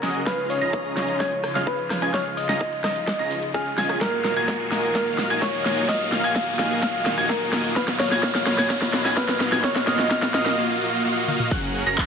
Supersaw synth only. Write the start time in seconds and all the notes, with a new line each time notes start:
0.03 C#4 F#4 G#4 A#4 D#5
0.26 C#4 F4 G#4 D#5 F5
0.61 C#4 F4 G#4 D#5 A#5
1.20 C#4 F4 G#4 D#5 G#5
1.55 C#4 F4 G#4 D#5 F5
2.02 C#4 F4 G#4 D#5 G#5
2.14 C#4 F4 G#4 D#5 F5
2.49 C#4 F4 G#4 D#5 A#5
3.19 C#4 F4 G#4 D#5 A#5
3.54 C#4 F4 G#4 D#5 F5
3.78 C#4 F4 G#4 D#5 G#5
4.01 A#3 F4 F#4 D#5 F5
4.36 A#3 F4 F#4 D#5 G#5
4.95 A#3 F4 F#4 D#5 F5
5.30 A#3 F4 F#4 D#5 G#5
5.89 A#3 F4 F#4 D#5 F5
6.24 A#3 F4 F#4 D#5 G#5
6.83 A#3 F4 F#4 D#5 F5
7.18 A#3 F4 F#4 D#5 G#5
7.76 A#3 F4 F#4 D#5 F5
8.12 A#3 F4 F#4 D#5 G#5
8.23 A#3 F4 F#4 D#5 F5
8.58 A#3 F4 F#4 D#5 G#5
8.70 A#3 F4 F#4 D#5 F5
9.05 A#3 F4 F#4 D#5 G#5
9.17 A#3 F4 F#4 D#5 F5
9.52 A#3 F4 F#4 D#5 G#5
9.64 A#3 F4 F#4 D#5 F5
9.87 A#3 F4 F#4 D#5 F5
10.11 A#3 F4 F#4 D#5 F5
10.34 A#3 F4 F#4 D#5 F5
10.58 A#3 F4 F#4 D#5 F5
10.81 A#3 F4 F#4 D#5 F5
11.05 A#3 F4 F#4 D#5 F5
11.28 A#3 F4 F#4 D#5 F5
11.51 C#4 F#4 G#4 A#4 F#5
11.87 C#4 F#4 G#4 A#4 A#5